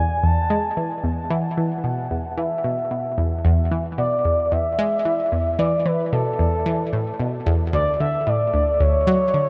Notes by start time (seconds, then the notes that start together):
Already playing: G#5
0.23 E2 A5
0.50 G#3
0.77 E3
1.04 E2
1.30 E3 F#5
1.57 E3
1.84 B2
2.11 E2
2.37 E3 E5
2.64 B2
2.91 B2
3.18 E2
3.45 E2
3.71 E3
3.98 B2 D5
4.25 E2
4.52 E2 E5
4.79 G#3
5.05 E3
5.32 E2
5.59 E3 D5
5.86 E3 B4
6.13 B2 A4
6.39 E2
6.66 E3
6.93 A2
7.20 B2
7.46 E2
7.73 D2 D5
8.00 D3 E5
8.27 A2 D5
8.54 D2
8.80 D2 C#5
9.07 F#3
9.34 D3